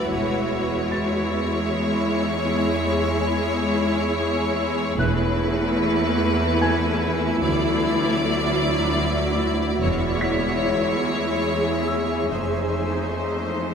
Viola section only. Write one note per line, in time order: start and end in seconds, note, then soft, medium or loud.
0.09 4.98 G#3 soft
0.09 4.94 E4 soft
4.98 7.37 A3 medium
4.98 9.78 E4 medium
7.41 9.78 F#3 soft
9.82 12.27 G#3 soft
9.82 12.27 E4 soft
12.30 13.74 A3 soft
12.30 13.74 D#4 soft